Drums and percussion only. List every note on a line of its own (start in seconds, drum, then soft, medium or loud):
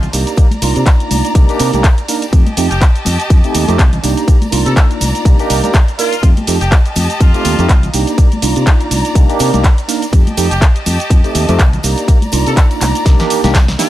0.02 closed hi-hat soft
0.02 low conga medium
0.02 cabasa soft
0.13 open hi-hat loud
0.13 ride medium
0.13 tambourine medium
0.13 cabasa medium
0.26 closed hi-hat soft
0.26 tambourine soft
0.26 cabasa soft
0.37 kick loud
0.37 closed hi-hat medium
0.37 ride medium
0.37 tambourine soft
0.37 cabasa soft
0.51 closed hi-hat soft
0.51 high conga medium
0.51 cabasa soft
0.62 open hi-hat loud
0.62 ride medium
0.62 tambourine loud
0.62 cabasa medium
0.76 closed hi-hat soft
0.76 tambourine soft
0.76 cabasa soft
0.86 kick loud
0.86 clap loud
0.86 closed hi-hat medium
0.86 ride medium
0.86 tambourine medium
0.86 cabasa soft
1.00 closed hi-hat soft
1.00 cabasa soft
1.11 open hi-hat loud
1.11 ride medium
1.11 tambourine medium
1.11 high conga medium
1.11 cabasa medium
1.24 closed hi-hat soft
1.24 tambourine soft
1.24 cabasa soft
1.35 kick loud
1.35 closed hi-hat medium
1.35 ride medium
1.35 tambourine medium
1.35 cabasa soft
1.49 closed hi-hat soft
1.49 tambourine soft
1.49 cabasa soft
1.59 open hi-hat loud
1.59 ride medium
1.59 tambourine medium
1.59 cabasa medium
1.73 closed hi-hat soft
1.73 tambourine soft
1.73 high conga medium
1.73 cabasa soft
1.84 kick loud
1.84 clap loud
1.84 closed hi-hat medium
1.84 ride medium
1.84 tambourine medium
1.84 cabasa soft
1.98 closed hi-hat soft
1.98 cabasa soft
2.08 open hi-hat loud
2.08 ride medium
2.08 tambourine loud
2.08 cabasa medium
2.22 closed hi-hat soft
2.22 tambourine soft
2.22 cabasa soft
2.33 kick loud
2.33 closed hi-hat medium
2.33 ride medium
2.33 cabasa soft
2.46 closed hi-hat soft
2.46 high conga loud
2.46 cabasa soft
2.57 open hi-hat loud
2.57 ride medium
2.57 tambourine medium
2.57 cabasa medium
2.71 closed hi-hat soft
2.71 tambourine soft
2.71 cabasa soft
2.81 kick loud
2.81 clap loud
2.81 closed hi-hat medium
2.81 ride medium
2.81 tambourine medium
2.81 cabasa soft
2.96 closed hi-hat soft
2.96 cabasa soft
3.05 open hi-hat loud
3.05 ride medium
3.05 tambourine medium
3.05 high conga medium
3.05 cabasa medium
3.20 closed hi-hat soft
3.20 tambourine soft
3.20 cabasa soft
3.30 kick loud
3.30 closed hi-hat medium
3.30 ride medium
3.30 tambourine medium
3.30 cabasa soft
3.44 closed hi-hat soft
3.44 tambourine soft
3.44 cabasa soft
3.55 open hi-hat loud
3.55 ride medium
3.55 tambourine loud
3.55 cabasa medium
3.68 closed hi-hat soft
3.68 tambourine soft
3.68 high conga loud
3.68 cabasa soft
3.79 kick loud
3.79 clap loud
3.79 closed hi-hat medium
3.79 ride medium
3.79 tambourine medium
3.79 cabasa soft
3.93 closed hi-hat soft
3.93 low conga loud
3.93 cabasa soft
4.04 open hi-hat loud
4.04 ride medium
4.04 tambourine medium
4.04 cabasa medium
4.17 closed hi-hat soft
4.17 tambourine soft
4.17 cabasa soft
4.28 kick loud
4.28 closed hi-hat medium
4.28 ride medium
4.28 tambourine soft
4.28 cabasa soft
4.42 closed hi-hat soft
4.42 tambourine soft
4.42 high conga loud
4.42 cabasa soft
4.52 open hi-hat loud
4.52 ride medium
4.52 tambourine medium
4.52 cabasa medium
4.66 closed hi-hat soft
4.66 tambourine soft
4.66 cabasa soft
4.76 kick loud
4.76 clap loud
4.76 closed hi-hat medium
4.76 ride medium
4.76 tambourine medium
4.76 cabasa soft
4.91 closed hi-hat soft
4.91 cabasa soft
5.01 open hi-hat loud
5.01 ride medium
5.01 tambourine loud
5.01 high conga medium
5.01 cabasa medium
5.15 closed hi-hat soft
5.15 tambourine soft
5.15 cabasa soft
5.25 kick loud
5.25 closed hi-hat medium
5.25 ride medium
5.25 tambourine medium
5.25 cabasa soft
5.39 closed hi-hat soft
5.39 tambourine soft
5.39 cabasa soft
5.50 open hi-hat loud
5.50 ride medium
5.50 tambourine loud
5.50 cabasa medium
5.64 closed hi-hat soft
5.64 tambourine soft
5.64 high conga medium
5.64 cabasa soft
5.73 kick loud
5.73 clap loud
5.73 closed hi-hat medium
5.73 ride medium
5.73 tambourine medium
5.73 cabasa soft
5.88 closed hi-hat soft
5.88 cabasa soft
5.99 open hi-hat loud
5.99 ride medium
5.99 tambourine medium
5.99 cabasa medium
6.12 closed hi-hat soft
6.12 tambourine soft
6.12 cabasa soft
6.23 kick loud
6.23 closed hi-hat medium
6.23 ride medium
6.23 tambourine soft
6.23 cabasa soft
6.37 closed hi-hat soft
6.37 high conga loud
6.37 cabasa soft
6.47 open hi-hat loud
6.47 ride medium
6.47 tambourine medium
6.47 cabasa medium
6.61 closed hi-hat soft
6.61 tambourine soft
6.61 cabasa soft
6.72 kick loud
6.72 clap loud
6.72 closed hi-hat medium
6.72 ride medium
6.72 tambourine medium
6.72 cabasa soft
6.86 closed hi-hat soft
6.86 cabasa soft
6.96 open hi-hat loud
6.96 ride medium
6.96 tambourine loud
6.96 high conga medium
6.96 cabasa medium
7.10 closed hi-hat soft
7.10 tambourine soft
7.10 cabasa soft
7.20 kick loud
7.20 closed hi-hat medium
7.20 ride medium
7.20 tambourine medium
7.20 cabasa soft
7.34 closed hi-hat soft
7.34 tambourine soft
7.34 cabasa soft
7.45 open hi-hat loud
7.45 ride medium
7.45 tambourine medium
7.45 cabasa medium
7.58 closed hi-hat soft
7.58 tambourine soft
7.58 high conga medium
7.58 cabasa soft
7.69 kick loud
7.69 clap loud
7.69 closed hi-hat medium
7.69 ride medium
7.69 tambourine soft
7.69 cabasa soft
7.83 closed hi-hat soft
7.83 low conga medium
7.83 cabasa soft
7.94 open hi-hat medium
7.94 ride medium
7.94 tambourine medium
7.94 cabasa medium
8.07 closed hi-hat soft
8.07 tambourine soft
8.07 cabasa soft
8.18 kick loud
8.18 closed hi-hat medium
8.18 ride medium
8.18 tambourine soft
8.18 cabasa soft
8.32 closed hi-hat soft
8.32 high conga medium
8.32 cabasa soft
8.42 open hi-hat loud
8.42 ride medium
8.42 tambourine loud
8.42 cabasa medium
8.56 closed hi-hat soft
8.56 tambourine soft
8.56 cabasa soft
8.67 kick loud
8.67 clap loud
8.67 closed hi-hat medium
8.67 ride medium
8.67 tambourine soft
8.67 cabasa soft
8.81 closed hi-hat soft
8.81 cabasa soft
8.91 open hi-hat medium
8.91 ride medium
8.91 tambourine medium
8.91 high conga medium
8.91 cabasa medium
9.05 closed hi-hat soft
9.05 tambourine soft
9.05 cabasa soft
9.15 kick loud
9.15 closed hi-hat medium
9.15 ride medium
9.15 tambourine medium
9.15 cabasa soft
9.29 closed hi-hat soft
9.29 tambourine soft
9.29 cabasa soft
9.39 open hi-hat loud
9.39 ride medium
9.39 tambourine medium
9.39 cabasa medium
9.54 closed hi-hat soft
9.54 tambourine soft
9.54 high conga loud
9.54 cabasa soft
9.64 kick loud
9.64 clap loud
9.64 closed hi-hat medium
9.64 ride medium
9.64 tambourine medium
9.64 cabasa soft
9.78 closed hi-hat soft
9.78 cabasa soft
9.89 open hi-hat medium
9.89 ride medium
9.89 tambourine medium
9.89 cabasa medium
10.02 closed hi-hat soft
10.02 tambourine soft
10.02 cabasa soft
10.13 kick loud
10.13 closed hi-hat medium
10.13 ride medium
10.13 tambourine soft
10.13 cabasa soft
10.27 closed hi-hat soft
10.27 high conga medium
10.27 cabasa soft
10.37 open hi-hat loud
10.37 ride medium
10.37 tambourine loud
10.37 cabasa medium
10.51 closed hi-hat soft
10.51 tambourine soft
10.51 cabasa soft
10.62 kick loud
10.62 clap loud
10.62 closed hi-hat medium
10.62 ride medium
10.62 tambourine medium
10.62 cabasa medium
10.76 closed hi-hat soft
10.76 cabasa soft
10.86 open hi-hat medium
10.86 ride medium
10.86 tambourine loud
10.86 high conga medium
10.86 cabasa medium
10.99 closed hi-hat soft
10.99 tambourine soft
10.99 cabasa soft
11.10 kick loud
11.10 closed hi-hat medium
11.10 ride medium
11.10 tambourine medium
11.10 cabasa soft
11.24 closed hi-hat soft
11.24 tambourine soft
11.24 cabasa soft
11.35 open hi-hat loud
11.35 ride medium
11.35 tambourine medium
11.35 cabasa medium
11.48 closed hi-hat soft
11.48 tambourine soft
11.48 high conga medium
11.48 cabasa soft
11.59 kick loud
11.59 clap loud
11.59 closed hi-hat medium
11.59 ride medium
11.59 tambourine medium
11.59 cabasa soft
11.73 closed hi-hat soft
11.73 low conga medium
11.73 cabasa soft
11.83 open hi-hat medium
11.83 ride medium
11.83 tambourine medium
11.83 cabasa medium
11.96 closed hi-hat soft
11.96 tambourine soft
11.96 cabasa soft
12.08 kick loud
12.08 closed hi-hat medium
12.08 ride medium
12.08 tambourine medium
12.08 cabasa soft
12.22 closed hi-hat soft
12.22 tambourine soft
12.22 high conga medium
12.22 cabasa soft
12.32 open hi-hat loud
12.32 ride medium
12.32 tambourine loud
12.32 cabasa medium
12.46 closed hi-hat soft
12.46 tambourine soft
12.46 cabasa soft
12.57 kick loud
12.57 clap loud
12.57 closed hi-hat medium
12.57 ride medium
12.57 tambourine medium
12.57 cabasa soft
12.71 closed hi-hat soft
12.71 tambourine soft
12.71 cabasa soft
12.81 clap medium
12.81 open hi-hat medium
12.81 ride medium
12.81 tambourine loud
12.81 high conga medium
12.81 cabasa medium
12.95 closed hi-hat soft
12.95 tambourine soft
12.95 cabasa soft
13.05 kick loud
13.05 snare medium
13.05 closed hi-hat medium
13.05 ride medium
13.05 tambourine medium
13.05 cabasa soft
13.19 snare medium
13.19 closed hi-hat soft
13.19 tambourine soft
13.19 low conga medium
13.19 cabasa soft
13.30 open hi-hat loud
13.30 ride medium
13.30 tambourine loud
13.30 cabasa medium
13.44 snare medium
13.44 closed hi-hat soft
13.44 tambourine soft
13.44 high conga medium
13.44 cabasa soft
13.54 kick loud
13.54 snare medium
13.54 clap loud
13.54 closed hi-hat medium
13.54 ride medium
13.54 tambourine medium
13.54 cabasa soft
13.68 snare medium
13.68 closed hi-hat soft
13.68 tambourine soft
13.68 cabasa soft
13.79 snare loud
13.79 open hi-hat medium
13.79 ride medium
13.79 tambourine medium
13.79 cabasa medium